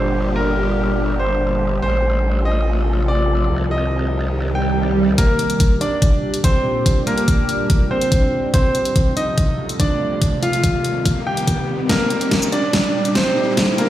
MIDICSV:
0, 0, Header, 1, 7, 480
1, 0, Start_track
1, 0, Key_signature, -2, "minor"
1, 0, Tempo, 419580
1, 168, Time_signature, 4, 2, 24, 8
1, 15890, End_track
2, 0, Start_track
2, 0, Title_t, "Grand piano"
2, 0, Program_c, 0, 0
2, 0, Note_on_c, 0, 72, 89
2, 314, Note_off_c, 0, 72, 0
2, 408, Note_on_c, 0, 70, 93
2, 1274, Note_off_c, 0, 70, 0
2, 1367, Note_on_c, 0, 72, 90
2, 1993, Note_off_c, 0, 72, 0
2, 2087, Note_on_c, 0, 72, 98
2, 2713, Note_off_c, 0, 72, 0
2, 2806, Note_on_c, 0, 75, 92
2, 3432, Note_off_c, 0, 75, 0
2, 3527, Note_on_c, 0, 74, 88
2, 4153, Note_off_c, 0, 74, 0
2, 4246, Note_on_c, 0, 75, 92
2, 5112, Note_off_c, 0, 75, 0
2, 5205, Note_on_c, 0, 79, 90
2, 5832, Note_off_c, 0, 79, 0
2, 5925, Note_on_c, 0, 70, 98
2, 5926, Note_on_c, 0, 58, 76
2, 6552, Note_off_c, 0, 58, 0
2, 6552, Note_off_c, 0, 70, 0
2, 6646, Note_on_c, 0, 62, 75
2, 6646, Note_on_c, 0, 74, 92
2, 7272, Note_off_c, 0, 74, 0
2, 7273, Note_off_c, 0, 62, 0
2, 7367, Note_on_c, 0, 60, 72
2, 7367, Note_on_c, 0, 72, 94
2, 7993, Note_off_c, 0, 60, 0
2, 7993, Note_off_c, 0, 72, 0
2, 8086, Note_on_c, 0, 58, 77
2, 8086, Note_on_c, 0, 70, 95
2, 8952, Note_off_c, 0, 58, 0
2, 8952, Note_off_c, 0, 70, 0
2, 9046, Note_on_c, 0, 72, 92
2, 9047, Note_on_c, 0, 60, 75
2, 9673, Note_off_c, 0, 60, 0
2, 9673, Note_off_c, 0, 72, 0
2, 9766, Note_on_c, 0, 60, 77
2, 9766, Note_on_c, 0, 72, 100
2, 10392, Note_off_c, 0, 60, 0
2, 10392, Note_off_c, 0, 72, 0
2, 10486, Note_on_c, 0, 63, 77
2, 10486, Note_on_c, 0, 75, 96
2, 11112, Note_off_c, 0, 63, 0
2, 11112, Note_off_c, 0, 75, 0
2, 11206, Note_on_c, 0, 62, 76
2, 11207, Note_on_c, 0, 74, 93
2, 11833, Note_off_c, 0, 62, 0
2, 11833, Note_off_c, 0, 74, 0
2, 11928, Note_on_c, 0, 65, 78
2, 11928, Note_on_c, 0, 77, 92
2, 12793, Note_off_c, 0, 65, 0
2, 12793, Note_off_c, 0, 77, 0
2, 12888, Note_on_c, 0, 67, 75
2, 12888, Note_on_c, 0, 79, 92
2, 13514, Note_off_c, 0, 67, 0
2, 13514, Note_off_c, 0, 79, 0
2, 13607, Note_on_c, 0, 70, 98
2, 13608, Note_on_c, 0, 58, 79
2, 14233, Note_off_c, 0, 58, 0
2, 14233, Note_off_c, 0, 70, 0
2, 14328, Note_on_c, 0, 62, 77
2, 14328, Note_on_c, 0, 74, 93
2, 14953, Note_off_c, 0, 62, 0
2, 14953, Note_off_c, 0, 74, 0
2, 15047, Note_on_c, 0, 60, 76
2, 15047, Note_on_c, 0, 72, 92
2, 15673, Note_off_c, 0, 60, 0
2, 15673, Note_off_c, 0, 72, 0
2, 15766, Note_on_c, 0, 58, 80
2, 15767, Note_on_c, 0, 70, 96
2, 15890, Note_off_c, 0, 58, 0
2, 15890, Note_off_c, 0, 70, 0
2, 15890, End_track
3, 0, Start_track
3, 0, Title_t, "Ambient pad"
3, 0, Program_c, 1, 92
3, 0, Note_on_c, 1, 46, 84
3, 0, Note_on_c, 1, 50, 75
3, 0, Note_on_c, 1, 55, 79
3, 0, Note_on_c, 1, 62, 75
3, 0, Note_on_c, 1, 67, 95
3, 2042, Note_off_c, 1, 55, 0
3, 2049, Note_off_c, 1, 46, 0
3, 2049, Note_off_c, 1, 50, 0
3, 2049, Note_off_c, 1, 62, 0
3, 2049, Note_off_c, 1, 67, 0
3, 2087, Note_on_c, 1, 53, 77
3, 2087, Note_on_c, 1, 57, 75
3, 2087, Note_on_c, 1, 69, 95
3, 2088, Note_on_c, 1, 48, 81
3, 2088, Note_on_c, 1, 65, 78
3, 3988, Note_off_c, 1, 53, 0
3, 3988, Note_off_c, 1, 57, 0
3, 3988, Note_off_c, 1, 65, 0
3, 3988, Note_off_c, 1, 69, 0
3, 4007, Note_on_c, 1, 51, 78
3, 4007, Note_on_c, 1, 55, 76
3, 4007, Note_on_c, 1, 63, 79
3, 4007, Note_on_c, 1, 67, 91
3, 5889, Note_off_c, 1, 48, 0
3, 5908, Note_off_c, 1, 51, 0
3, 5908, Note_off_c, 1, 55, 0
3, 5908, Note_off_c, 1, 63, 0
3, 5908, Note_off_c, 1, 67, 0
3, 5926, Note_on_c, 1, 50, 75
3, 5927, Note_on_c, 1, 46, 84
3, 5927, Note_on_c, 1, 55, 78
3, 5927, Note_on_c, 1, 62, 78
3, 5927, Note_on_c, 1, 67, 91
3, 9729, Note_off_c, 1, 46, 0
3, 9729, Note_off_c, 1, 50, 0
3, 9729, Note_off_c, 1, 55, 0
3, 9729, Note_off_c, 1, 62, 0
3, 9729, Note_off_c, 1, 67, 0
3, 9766, Note_on_c, 1, 48, 83
3, 9766, Note_on_c, 1, 53, 78
3, 9766, Note_on_c, 1, 57, 79
3, 9766, Note_on_c, 1, 69, 94
3, 9767, Note_on_c, 1, 65, 79
3, 11668, Note_off_c, 1, 53, 0
3, 11668, Note_off_c, 1, 57, 0
3, 11668, Note_off_c, 1, 65, 0
3, 11668, Note_off_c, 1, 69, 0
3, 11685, Note_on_c, 1, 55, 77
3, 11685, Note_on_c, 1, 63, 78
3, 11685, Note_on_c, 1, 67, 93
3, 11686, Note_on_c, 1, 51, 77
3, 13569, Note_off_c, 1, 48, 0
3, 13587, Note_off_c, 1, 51, 0
3, 13587, Note_off_c, 1, 63, 0
3, 13607, Note_on_c, 1, 50, 77
3, 13608, Note_on_c, 1, 46, 85
3, 13608, Note_on_c, 1, 62, 77
3, 15890, Note_off_c, 1, 46, 0
3, 15890, Note_off_c, 1, 50, 0
3, 15890, Note_off_c, 1, 55, 0
3, 15890, Note_off_c, 1, 62, 0
3, 15890, Note_off_c, 1, 67, 0
3, 15890, End_track
4, 0, Start_track
4, 0, Title_t, "Wobble bass"
4, 0, Program_c, 2, 39
4, 0, Note_on_c, 2, 31, 84
4, 2064, Note_off_c, 2, 31, 0
4, 2088, Note_on_c, 2, 33, 84
4, 3984, Note_off_c, 2, 33, 0
4, 4006, Note_on_c, 2, 36, 85
4, 5903, Note_off_c, 2, 36, 0
4, 15890, End_track
5, 0, Start_track
5, 0, Title_t, "Riser"
5, 0, Program_c, 3, 103
5, 5927, Note_on_c, 3, 60, 78
5, 15890, Note_off_c, 3, 60, 0
5, 15890, End_track
6, 0, Start_track
6, 0, Title_t, "Swell"
6, 0, Program_c, 4, 103
6, 4967, Note_on_c, 4, 60, 74
6, 5927, Note_off_c, 4, 60, 0
6, 15890, End_track
7, 0, Start_track
7, 0, Title_t, "Drums"
7, 5927, Note_on_c, 9, 36, 98
7, 5927, Note_on_c, 9, 42, 84
7, 6041, Note_off_c, 9, 36, 0
7, 6041, Note_off_c, 9, 42, 0
7, 6167, Note_on_c, 9, 42, 54
7, 6281, Note_off_c, 9, 42, 0
7, 6289, Note_on_c, 9, 42, 55
7, 6403, Note_off_c, 9, 42, 0
7, 6406, Note_on_c, 9, 42, 79
7, 6407, Note_on_c, 9, 36, 94
7, 6521, Note_off_c, 9, 36, 0
7, 6521, Note_off_c, 9, 42, 0
7, 6647, Note_on_c, 9, 42, 55
7, 6762, Note_off_c, 9, 42, 0
7, 6887, Note_on_c, 9, 36, 101
7, 6887, Note_on_c, 9, 42, 81
7, 7001, Note_off_c, 9, 36, 0
7, 7002, Note_off_c, 9, 42, 0
7, 7249, Note_on_c, 9, 42, 54
7, 7364, Note_off_c, 9, 42, 0
7, 7367, Note_on_c, 9, 36, 95
7, 7367, Note_on_c, 9, 42, 81
7, 7481, Note_off_c, 9, 36, 0
7, 7482, Note_off_c, 9, 42, 0
7, 7847, Note_on_c, 9, 36, 96
7, 7847, Note_on_c, 9, 42, 78
7, 7961, Note_off_c, 9, 36, 0
7, 7961, Note_off_c, 9, 42, 0
7, 8087, Note_on_c, 9, 42, 54
7, 8202, Note_off_c, 9, 42, 0
7, 8209, Note_on_c, 9, 42, 52
7, 8324, Note_off_c, 9, 42, 0
7, 8327, Note_on_c, 9, 36, 97
7, 8327, Note_on_c, 9, 42, 78
7, 8441, Note_off_c, 9, 36, 0
7, 8441, Note_off_c, 9, 42, 0
7, 8567, Note_on_c, 9, 42, 52
7, 8681, Note_off_c, 9, 42, 0
7, 8807, Note_on_c, 9, 36, 100
7, 8807, Note_on_c, 9, 42, 80
7, 8921, Note_off_c, 9, 36, 0
7, 8921, Note_off_c, 9, 42, 0
7, 9169, Note_on_c, 9, 42, 53
7, 9283, Note_off_c, 9, 42, 0
7, 9287, Note_on_c, 9, 36, 95
7, 9287, Note_on_c, 9, 42, 79
7, 9401, Note_off_c, 9, 36, 0
7, 9401, Note_off_c, 9, 42, 0
7, 9766, Note_on_c, 9, 36, 99
7, 9767, Note_on_c, 9, 42, 78
7, 9881, Note_off_c, 9, 36, 0
7, 9881, Note_off_c, 9, 42, 0
7, 10007, Note_on_c, 9, 42, 50
7, 10121, Note_off_c, 9, 42, 0
7, 10129, Note_on_c, 9, 42, 52
7, 10244, Note_off_c, 9, 42, 0
7, 10246, Note_on_c, 9, 36, 96
7, 10247, Note_on_c, 9, 42, 75
7, 10361, Note_off_c, 9, 36, 0
7, 10361, Note_off_c, 9, 42, 0
7, 10487, Note_on_c, 9, 42, 51
7, 10601, Note_off_c, 9, 42, 0
7, 10726, Note_on_c, 9, 36, 101
7, 10727, Note_on_c, 9, 42, 76
7, 10841, Note_off_c, 9, 36, 0
7, 10842, Note_off_c, 9, 42, 0
7, 11089, Note_on_c, 9, 42, 51
7, 11204, Note_off_c, 9, 42, 0
7, 11206, Note_on_c, 9, 36, 92
7, 11207, Note_on_c, 9, 42, 78
7, 11321, Note_off_c, 9, 36, 0
7, 11322, Note_off_c, 9, 42, 0
7, 11686, Note_on_c, 9, 36, 98
7, 11687, Note_on_c, 9, 42, 76
7, 11801, Note_off_c, 9, 36, 0
7, 11802, Note_off_c, 9, 42, 0
7, 11927, Note_on_c, 9, 42, 51
7, 12042, Note_off_c, 9, 42, 0
7, 12049, Note_on_c, 9, 42, 50
7, 12164, Note_off_c, 9, 42, 0
7, 12166, Note_on_c, 9, 36, 95
7, 12167, Note_on_c, 9, 42, 74
7, 12281, Note_off_c, 9, 36, 0
7, 12282, Note_off_c, 9, 42, 0
7, 12407, Note_on_c, 9, 42, 49
7, 12521, Note_off_c, 9, 42, 0
7, 12647, Note_on_c, 9, 36, 100
7, 12648, Note_on_c, 9, 42, 75
7, 12761, Note_off_c, 9, 36, 0
7, 12762, Note_off_c, 9, 42, 0
7, 13010, Note_on_c, 9, 42, 50
7, 13124, Note_off_c, 9, 42, 0
7, 13127, Note_on_c, 9, 36, 94
7, 13128, Note_on_c, 9, 42, 75
7, 13241, Note_off_c, 9, 36, 0
7, 13242, Note_off_c, 9, 42, 0
7, 13607, Note_on_c, 9, 36, 100
7, 13607, Note_on_c, 9, 38, 50
7, 13607, Note_on_c, 9, 42, 75
7, 13721, Note_off_c, 9, 36, 0
7, 13722, Note_off_c, 9, 38, 0
7, 13722, Note_off_c, 9, 42, 0
7, 13847, Note_on_c, 9, 42, 52
7, 13962, Note_off_c, 9, 42, 0
7, 13969, Note_on_c, 9, 42, 52
7, 14083, Note_off_c, 9, 42, 0
7, 14087, Note_on_c, 9, 36, 95
7, 14087, Note_on_c, 9, 38, 51
7, 14087, Note_on_c, 9, 42, 75
7, 14202, Note_off_c, 9, 36, 0
7, 14202, Note_off_c, 9, 38, 0
7, 14202, Note_off_c, 9, 42, 0
7, 14210, Note_on_c, 9, 82, 84
7, 14324, Note_off_c, 9, 82, 0
7, 14328, Note_on_c, 9, 42, 50
7, 14442, Note_off_c, 9, 42, 0
7, 14567, Note_on_c, 9, 36, 98
7, 14567, Note_on_c, 9, 38, 53
7, 14567, Note_on_c, 9, 42, 78
7, 14682, Note_off_c, 9, 36, 0
7, 14682, Note_off_c, 9, 38, 0
7, 14682, Note_off_c, 9, 42, 0
7, 14930, Note_on_c, 9, 42, 51
7, 15044, Note_off_c, 9, 42, 0
7, 15047, Note_on_c, 9, 36, 96
7, 15048, Note_on_c, 9, 38, 55
7, 15048, Note_on_c, 9, 42, 76
7, 15161, Note_off_c, 9, 36, 0
7, 15162, Note_off_c, 9, 38, 0
7, 15162, Note_off_c, 9, 42, 0
7, 15527, Note_on_c, 9, 36, 99
7, 15528, Note_on_c, 9, 38, 60
7, 15528, Note_on_c, 9, 42, 78
7, 15641, Note_off_c, 9, 36, 0
7, 15642, Note_off_c, 9, 38, 0
7, 15642, Note_off_c, 9, 42, 0
7, 15768, Note_on_c, 9, 42, 53
7, 15882, Note_off_c, 9, 42, 0
7, 15890, End_track
0, 0, End_of_file